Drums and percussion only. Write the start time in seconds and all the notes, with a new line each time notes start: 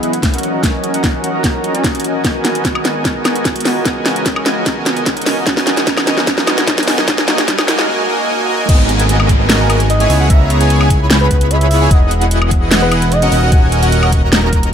0.03 closed hi-hat
0.13 closed hi-hat
0.23 kick, snare, closed hi-hat
0.34 closed hi-hat
0.38 closed hi-hat
0.43 closed hi-hat
0.63 kick, snare, closed hi-hat
0.84 closed hi-hat
0.94 closed hi-hat
1.04 kick, snare, closed hi-hat
1.24 closed hi-hat
1.44 kick, snare, closed hi-hat
1.64 closed hi-hat
1.75 closed hi-hat
1.84 kick, snare, closed hi-hat
1.95 closed hi-hat
2.00 closed hi-hat
2.04 closed hi-hat
2.24 kick, snare, closed hi-hat
2.45 snare, closed hi-hat
2.55 closed hi-hat
2.65 kick, snare, closed hi-hat
2.75 high woodblock
2.85 snare, closed hi-hat
3.05 kick, snare, closed hi-hat
3.25 snare, closed hi-hat, high woodblock
3.36 closed hi-hat
3.45 kick, snare, closed hi-hat
3.56 closed hi-hat
3.60 closed hi-hat
3.65 snare, open hi-hat
3.85 kick, snare, closed hi-hat
4.06 snare, closed hi-hat
4.16 closed hi-hat
4.26 kick, snare, closed hi-hat
4.36 high woodblock
4.46 snare, closed hi-hat
4.66 kick, snare, closed hi-hat
4.86 snare, closed hi-hat
4.97 closed hi-hat
5.06 kick, snare, closed hi-hat
5.17 closed hi-hat
5.22 closed hi-hat
5.26 snare, open hi-hat
5.47 kick, snare, closed hi-hat
5.57 snare
5.67 snare, closed hi-hat
5.77 snare, closed hi-hat
5.87 kick, snare, closed hi-hat
5.97 snare, high woodblock
6.07 snare, closed hi-hat
6.18 snare
6.27 kick, snare, closed hi-hat
6.38 snare
6.47 snare, closed hi-hat, high woodblock
6.58 snare, closed hi-hat
6.67 kick, snare, closed hi-hat
6.78 snare, closed hi-hat
6.83 closed hi-hat
6.88 snare, open hi-hat
6.98 snare
7.08 kick, snare, closed hi-hat
7.18 snare
7.28 snare, closed hi-hat
7.38 snare, closed hi-hat
7.48 kick, snare, closed hi-hat
7.58 snare, high woodblock
7.68 snare, closed hi-hat
7.79 snare
8.69 kick, closed hi-hat, crash
8.89 closed hi-hat
9.00 closed hi-hat
9.09 closed hi-hat
9.20 high woodblock
9.29 kick, closed hi-hat
9.50 snare, closed hi-hat
9.70 closed hi-hat, high woodblock
9.80 closed hi-hat
9.90 closed hi-hat
10.00 closed hi-hat
10.10 open hi-hat
10.30 kick, closed hi-hat
10.50 closed hi-hat
10.61 closed hi-hat
10.70 closed hi-hat
10.81 high woodblock
10.90 kick, closed hi-hat
11.10 snare, closed hi-hat
11.31 kick, closed hi-hat
11.41 closed hi-hat
11.51 closed hi-hat
11.61 closed hi-hat
11.71 open hi-hat
11.91 kick, closed hi-hat
12.11 closed hi-hat
12.21 closed hi-hat
12.31 closed hi-hat
12.42 high woodblock
12.51 kick, closed hi-hat
12.71 snare, closed hi-hat
12.92 closed hi-hat, high woodblock
13.02 closed hi-hat
13.12 closed hi-hat
13.22 closed hi-hat
13.32 open hi-hat
13.52 kick, closed hi-hat
13.72 closed hi-hat
13.83 closed hi-hat
13.92 closed hi-hat
14.03 high woodblock
14.12 kick, closed hi-hat
14.33 snare, closed hi-hat
14.53 kick, closed hi-hat
14.63 closed hi-hat